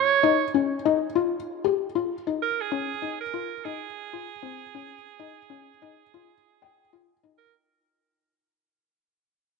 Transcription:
Already playing: C#5
0.23 D#4
0.54 C#4
0.85 D#4
1.15 F4
1.64 G4
1.95 F4
2.27 D#4
2.42 A#4
2.61 G#4
2.72 C#4
3.02 D#4
3.21 A#4
3.34 F4
3.65 D#4 G#4
4.13 F4
4.43 C4
4.75 C#4
5.20 D#4
5.50 C#4
5.82 D#4
6.14 F4
6.62 G5
6.93 F4
7.23 D#4
7.38 A#4

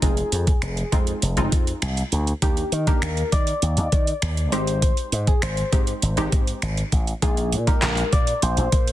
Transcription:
0.02 F1 G#3 C4 D#4 F4 G#4, kick, closed hi-hat
0.17 closed hi-hat
0.32 F2, closed hi-hat
0.47 kick, closed hi-hat
0.62 F1, finger snap, closed hi-hat
0.77 closed hi-hat
0.92 F2 G#3 C4 D#4 F4, kick, closed hi-hat
1.07 closed hi-hat
1.22 F1, closed hi-hat
1.37 F1 G#3 C4 D#4 F4, closed hi-hat
1.52 F2, kick, closed hi-hat
1.67 closed hi-hat
1.82 C2, finger snap, closed hi-hat
1.97 closed hi-hat
2.12 D2, closed hi-hat
2.27 closed hi-hat
2.42 D#2 A#3 D4 D#4 G4, kick, closed hi-hat
2.57 closed hi-hat
2.72 D#3, closed hi-hat
2.87 A#3 D4 D#4 G4 A#4, kick, closed hi-hat
3.02 D#2, finger snap, closed hi-hat
3.17 closed hi-hat
3.32 D#3 D5, kick, closed hi-hat
3.47 closed hi-hat
3.62 D#2, closed hi-hat
3.77 D#2, closed hi-hat
3.92 D#3, kick, closed hi-hat
4.07 closed hi-hat
4.22 D#2, finger snap, closed hi-hat
4.37 closed hi-hat
4.52 G#1 G#3 C4 D#4 G4 C5, closed hi-hat
4.67 closed hi-hat
4.82 kick, closed hi-hat
4.97 closed hi-hat
5.12 G#2, closed hi-hat
5.27 G#4, kick, closed hi-hat
5.42 G#1 C5, finger snap, closed hi-hat
5.57 closed hi-hat
5.72 G#2 G#3 C4 D#4 G4, kick, closed hi-hat
5.87 closed hi-hat
6.02 G#1, closed hi-hat
6.17 G#1 G#3 C4 D#4 G4, closed hi-hat
6.32 G#2, kick, closed hi-hat
6.47 closed hi-hat
6.62 G#1, finger snap, closed hi-hat
6.77 closed hi-hat
6.92 A1, kick, closed hi-hat
7.07 closed hi-hat
7.22 A#1 G#3 A#3 D#4 F4 G#4, kick, closed hi-hat
7.37 closed hi-hat
7.52 A#2, closed hi-hat
7.67 G#3 A#3 D#4 G4 A#4, kick, closed hi-hat
7.82 A#1, snare, clap, closed hi-hat
7.97 closed hi-hat
8.13 A#2 D5, kick, closed hi-hat
8.27 closed hi-hat
8.42 A#1 C5, closed hi-hat
8.57 A#1, closed hi-hat
8.72 A#2, kick, closed hi-hat
8.87 closed hi-hat

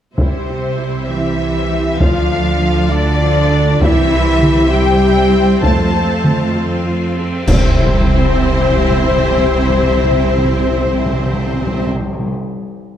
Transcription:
0.17 C2 C3 G3 C4 E4 G4 C5 E5, taiko
0.48 C4 G4
0.79 G3 E4
1.08 E3 C4 E4 G4 E5
1.40 G3 E4
1.70 C4 G4
2.00 D2 F3 D4 F4 A4 D5 F5, taiko
2.31 A3 D4
2.61 F3 F4
2.90 D3 A3 D4 D5
3.20 F3 F4
3.50 A3 D4
3.80 C2 C3 E3 C4 E4 G4 C5 E5, taiko
4.12 C4 E4
4.42 E4 G4, taiko mid
4.70 G3 C4 E4 G4 G5
5.03 E4 G4
5.32 C4 E4
5.61 F2 A3 F4 A4 F5 A5, taiko
5.95 C4 A4
6.24 A3 F4, taiko mid
6.57 C4 A4
6.88 A3 F4
7.18 C4 A4
7.47 C2 C3 C4 E4 G4 C5 E5, concert bass drum, taiko, crash
7.54 C3
7.61 C3
7.68 C3
7.74 C3
7.80 C3
7.87 C3
7.94 C3
8.01 C3
8.07 C3
8.13 C3
8.20 C3
8.26 C3
8.32 C3
8.39 C3
8.45 C3
8.51 C3
8.58 C3
8.65 C3
8.71 C3
8.77 C3
8.84 C3
8.91 C3
8.98 C3
9.04 C3
9.11 C3
9.18 C3
9.24 C3
9.30 C3
9.37 C3
9.44 C3
9.50 C3
9.56 C3
9.63 C3
9.69 C3
9.77 C3
9.83 C3
9.90 C3
9.97 C3
10.04 C3
10.11 C3
10.18 C3
10.25 C3
10.31 C3
10.38 C3
10.45 C3
10.52 C3
10.58 C3
10.65 C3
10.71 C3
10.78 C3
10.85 C3
10.92 C3
10.99 C3
11.06 C3
11.13 C3
11.19 C3
11.26 C3
11.33 C3
11.40 C3
11.46 C3
11.54 C3
11.60 C3
11.67 C3
11.73 C3
11.80 C3
11.87 C3
11.94 C3
12.01 C3
12.07 C3
12.13 C3
12.19 C3
12.26 C3
12.32 C3

